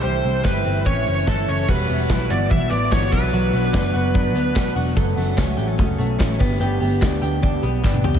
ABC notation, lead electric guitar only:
X:1
M:4/4
L:1/8
Q:1/4=146
K:Edor
V:1 name="Lead electric guitar"
=c2 B2 ^c2 A c | B3 d e d c B- | B6- B z | z8 |
z8 |]